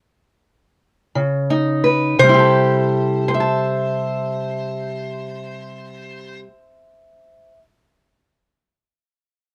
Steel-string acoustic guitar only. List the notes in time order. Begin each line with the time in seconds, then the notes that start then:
1.15 C#3
1.50 D#4
1.84 B4
2.19 C3
2.23 G3
2.29 E4
2.34 G4
2.39 A4
3.28 C5
3.34 E5
3.40 A5